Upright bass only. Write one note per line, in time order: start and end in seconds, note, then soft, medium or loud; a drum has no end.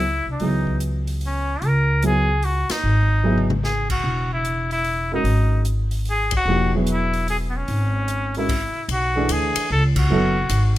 0.00 0.23 C#2 medium
0.26 0.40 C2 soft
0.40 1.58 C#2 medium
1.62 2.65 C#2 medium
2.70 muted upright bass stroke soft
2.83 4.01 G#1 medium
4.04 5.22 E1 medium
5.24 6.42 G#1 medium
6.45 7.64 E1 medium
7.68 8.72 G#1 medium
8.75 muted upright bass stroke soft
8.88 9.28 B1 medium
9.29 9.54 D2 medium
9.56 muted upright bass stroke soft
9.70 10.09 C#2 medium
10.09 10.49 F#1 medium
10.50 10.78 G#1 medium